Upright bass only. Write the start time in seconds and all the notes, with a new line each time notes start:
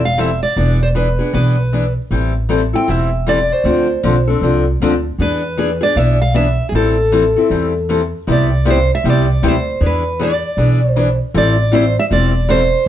Already playing: E1
0.56 E1
1.34 B1
2.11 A1
2.88 E1
3.64 D2
4.04 B1
4.42 C2
4.80 D2
5.18 E2
5.96 B1
6.72 A1
7.50 E2
8.28 C2
9.04 C2
9.42 D2
9.81 E2
10.57 B1
11.34 A1
12.11 E1